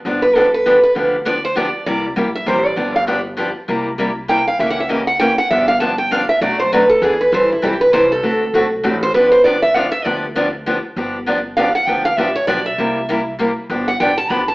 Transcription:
X:1
M:3/4
L:1/8
Q:"Swing" 1/4=198
K:Gmix
V:1 name="Steel-string acoustic guitar"
z B A B2 B | z2 d c d2 | d z2 e c d- | d f z4 |
z4 g f | (3e ^f e _e f g f | e f a g f e | d c B A ^G B |
c E G B c A- | A2 z3 c | B c d e f e | d z4 z |
z4 f ^f | g f e ^c d e- | e4 z2 | z ^f g a b a |]
V:2 name="Steel-string acoustic guitar"
[D,F,B,DG] z [D,F,B,DG] z [D,F,B,DG] z | [D,F,B,DG] z [D,F,B,DG] z [D,F,B,DG] z | [C,G,_B,EG] z [C,G,B,EG] z [C,G,B,EG] z | [D,F,B,DG] z [D,F,B,DG] z [D,F,B,DG] z |
[C,G,_B,EG] z [C,G,B,EG] z [C,G,B,EG] z | [^C,E,^A,^CG] z [C,E,A,CG] z [C,E,A,CG] z | [D,F,B,DG] z [D,F,B,DG] z [D,F,B,DG] z | [B,,^F,A,D^F] z [B,,F,A,DF] z [E,B,D^G] z |
[E,G,CEA] z [E,G,CEA] z [E,G,CEA] z | [D,A,C^FA] z [D,A,CFA] z [D,A,CFA] z | [D,F,B,DG] z [D,F,B,DG] z [D,F,B,DG] z | [D,F,B,DG] z [D,F,B,DG] z [D,F,B,DG] z |
[D,F,B,DG] z [D,F,B,DG] z [D,F,B,DG] z | [D,F,B,DG] z [D,F,B,DG] z [D,F,B,DG] z | [C,G,_B,EG] z [C,G,B,EG] z [C,G,B,EG] z | [D,F,B,DG] z [D,F,B,DG] z [D,F,B,DG] z |]
V:3 name="Upright bass" clef=bass
G,,,6 | D,,6 | C,,2 _B,,,2 A,,,2 | G,,,6 |
C,,6 | ^C,,6 | G,,,6 | B,,,4 E,,2 |
A,,,2 B,,,2 C,,2 | D,,2 B,,,2 A,,,2 | G,,,6 | D,,6 |
G,,,6 | D,,2 A,,,2 B,,,2 | C,,6 | G,,,2 A,,,2 B,,,2 |]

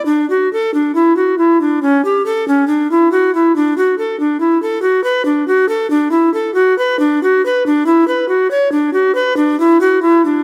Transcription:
X:1
M:4/4
L:1/16
Q:1/4=69
K:Dlyd
V:1 name="Recorder"
D F A D E F E D C =G A C D E F E | D F A D E A F B D F A D E A F B | [K:Bdor] D F B D E B F c D F B D E F E D |]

